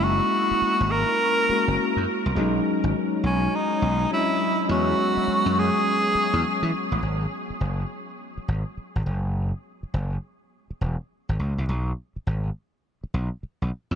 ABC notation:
X:1
M:4/4
L:1/16
Q:"Swing 16ths" 1/4=103
K:F#mix
V:1 name="Tenor saxophone"
F6 A8 z2 | z6 C2 D4 E4 | F6 G8 z2 | z16 |
z16 | z16 |]
V:2 name="Tine electric piano"
[G,A,CE]8- [G,A,CE]2 [G,A,CF]6 | [F,G,CD]12 [F,G,C=D^d]4 | [F,G,B,C]16 | z16 |
z16 | z16 |]
V:3 name="Slap bass" clef=bass
F,,,2 z3 G,,,2 z4 F,,, z F,, z ^B,,, | B,,,2 z G,,, z2 B,,,2 z2 B,,,2 z4 | E,,2 z3 F,,2 z4 E,, z E, z =A,,, | G,,,2 z2 F,,,2 z4 G,,, z2 G,,, F,,,2- |
F,,,2 z2 F,,,2 z4 E,,, z2 G,,, C,, ^B,,, | B,,,2 z2 G,,,2 z4 B,,, z2 B,,, z ^E,, |]